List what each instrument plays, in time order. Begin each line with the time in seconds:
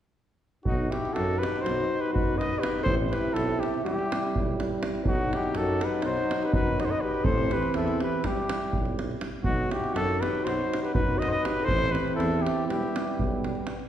0.64 tuba B1, euphonium B2, alto saxophone D#4, french horn D#4, trumpet F#4, davul low
0.89 alto saxophone E4, trumpet G4, davul high
1.05 davul high
1.13 tuba F#2, alto saxophone F#4, trumpet A4, davul high
1.39 alto saxophone G4, trumpet B4
1.43 davul high
1.56 davul high
1.61 tuba B1, alto saxophone F#4, trumpet C5
1.66 davul high
1.80 davul high
1.99 alto saxophone G4, trumpet B4
2.06 davul high
2.13 tuba F#2, alto saxophone F#4, trumpet B4, davul low
2.37 alto saxophone B4, trumpet D#5, davul high
2.53 davul high
2.59 alto saxophone G4, trumpet B4
2.63 davul high
2.75 davul high
2.82 tuba A1, euphonium C3, french horn E4, alto saxophone A4, trumpet C5, davul low
3.09 alto saxophone G4, trumpet B4
3.13 davul high
3.25 davul high
3.34 tuba B1, alto saxophone E4, trumpet A4, davul high
3.60 alto saxophone E4, trumpet G4, davul high
3.74 davul high
3.84 tuba E1, euphonium G3, french horn E4, alto saxophone E4, trumpet G4, davul high
3.99 davul high
4.12 davul high
4.23 davul high
4.34 tuba B1, davul low
4.60 davul high
4.72 davul high
4.83 davul high
4.95 davul high
5.03 tuba B1, euphonium F#3, french horn D#4, alto saxophone D#4, davul low
5.08 trumpet F#4
5.33 alto saxophone E4, trumpet G4, davul high
5.43 davul high
5.54 tuba F#2, alto saxophone F#4, trumpet A4, davul high
5.81 alto saxophone G4, trumpet B4, davul high
6.02 tuba B1, alto saxophone F#4, trumpet C5, davul high
6.17 davul high
6.31 davul high
6.43 alto saxophone G4, trumpet B4, davul high
6.53 tuba F#2, alto saxophone F#4, trumpet B4, davul low
6.80 alto saxophone B4, trumpet D#5, davul high
6.85 alto saxophone A4, trumpet C5
6.91 alto saxophone B4, trumpet D#5, davul high
7.01 alto saxophone G4, trumpet B4
7.14 davul high
7.24 tuba A1, euphonium E3, french horn C4, alto saxophone A4, trumpet C5, davul low
7.38 davul high
7.51 alto saxophone G4, trumpet B4, davul high
7.62 davul high
7.74 tuba E2, alto saxophone E4, trumpet A4, davul high
7.88 davul high
8.00 alto saxophone G4, trumpet B4, davul high
8.12 davul high
8.24 tuba E1, euphonium G3, alto saxophone E4, french horn E4, trumpet G4, davul high, davul low
8.37 davul high
8.49 davul high
8.61 davul high
8.73 tuba B1, davul low
8.85 davul high
8.99 davul high
9.11 davul high
9.21 davul high
9.43 tuba B1, euphonium F#3, alto saxophone D#4, french horn D#4, trumpet F#4, davul low
9.69 alto saxophone E4, trumpet G4, davul high
9.84 davul high
9.93 tuba F#2, alto saxophone F#4, trumpet A4, davul high
10.21 alto saxophone G4, trumpet B4, davul high
10.35 davul high
10.44 tuba B1, alto saxophone F#4, trumpet C5, davul high
10.61 davul high
10.74 davul high
10.81 alto saxophone G4, trumpet B4, davul high
10.94 tuba F#2, alto saxophone F#4, trumpet B4, davul low
11.18 alto saxophone B4, trumpet D#5
11.22 davul high
11.28 alto saxophone A4 B4, trumpet C5 D#5
11.34 davul high
11.42 alto saxophone G4, trumpet B4, davul high
11.57 davul high
11.62 alto saxophone A4, trumpet C5
11.67 tuba A1, euphonium E3, french horn C4, davul low
11.92 alto saxophone G4, trumpet B4, davul high
12.08 davul high
12.15 tuba E2, alto saxophone E4, trumpet A4
12.20 davul high
12.42 alto saxophone E4, trumpet G4
12.47 davul high
12.58 davul high
12.65 tuba E1, euphonium G3, french horn B3, alto saxophone E4, trumpet G4
12.70 davul high
12.83 davul high
12.96 davul high
13.08 davul high
13.18 tuba B1, davul low
13.44 davul high
13.55 davul high
13.67 davul high
13.79 davul high